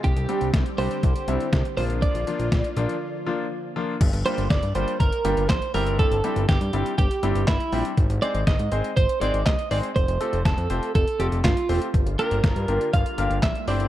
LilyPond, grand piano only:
\new Staff \with { instrumentName = "Grand piano" } { \time 4/4 \key g \dorian \tempo 4 = 121 r8 <g c' d' g'>8 r8 <g c' d' g'>8 r8 <g c' d' e'>8 r8 <f bes d' f'>8~ | <f bes d' f'>8 <f bes d' f'>8 r8 <f bes d' f'>8 r8 <f bes d' f'>8 r8 <f bes d' f'>8 | r8 <g bes d' f' g'>8 r8 <g bes d' f' g'>8 r8 <g bes d' f' g'>8 r8 <g c' d' e' g'>8~ | <g c' d' e' g'>8 <g c' d' e' g'>8 r8 <g c' d' e' g'>8 r8 <g c' d' e' g'>8 r8 <g c' d' e' g'>8 |
r8 <aes c' ees' aes' c''>8 r8 <aes c' ees' aes' c''>8 r8 <aes c' ees' aes' c''>8 r8 <aes c' ees' aes' c''>8 | r8 <a c' f' g' a'>8 r8 <a c' f' g' c''>8 r8 <a c' f' g' a'>8 r8 <a c' f' g' c''>8 | r8 <bes d' f' g' bes'>8 r8 <bes d' f' g' bes'>8 r8 <bes d' f' g' bes'>8 r8 <c' d' e' g' c''>8 | }